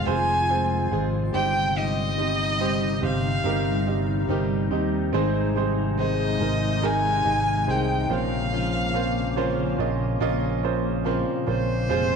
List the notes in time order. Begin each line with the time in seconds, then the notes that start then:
Already playing: C3 D#3 G#3 C4 F4 G#4 C5 D#5
0.06 F1 F3 G#3 C4 F4 G#4 C5 G#5
0.49 C4 F4 G#4 C5
0.91 G#1 F2 C3 F3 G#3 C4 F4 G#4 C5
1.33 G1 G2 C3 G3 C4 D#4 G4 C5 G5
1.76 G3 C4 D#4 G4 D#5
2.18 C4 D#4 G4 D#5
2.60 G3 C4 D#4 G4 C5
3.01 G1 C4 D#4 G4 C5
3.06 C4 F5
3.44 G1 G3 C4 D#4 G4 A#4
3.86 C4 D#4 G4 D#5
4.29 G1 G3 C4 D#4 G4 A#4
4.71 D#2 C4 D#4 G4 D#5
5.13 G#1 G#2 C3 D#3 G#3 C4 D#4 G#4 C5
5.55 G#3 C4 D#4 G#4 C5
5.98 G#2 D#3 G#3 C4 D#4 G#4 C5 D#5
6.40 G#1 C4 D#4 G#4 A#4
6.44 G#3
6.82 G#3 C4 D#4 G#4 A#4 G#5
6.86 G#4
7.24 G#1 C4 D#4 G#4 D#5
7.67 C2 G#2 D#3 G#3 C4 D#4 G#4 C5 G5
8.09 A#1 A#2 C#3 F3 A#3 C4 C#4 F4 A#4 C5 F5
8.52 A#2 F3 C4 C#4 F4
8.94 C4 C#4 F4 A#4 C5
9.36 A#2 F3 C4 C#4 F4 A#4 C5
9.78 A#1 C4 C#4 F4 A#4 D#5
10.20 A#1 F3 C4 C#4 F4 A#4 D#5
10.63 C#4 F4 A#4 C5
11.04 A#2 F3 C4 C#4 F4 A#4 C5
11.46 A#1 C4 C#4 F4 A#4 C5
11.50 C#4
11.89 F1 F2 C3 F3 G#3 C4 F4 G#4 C5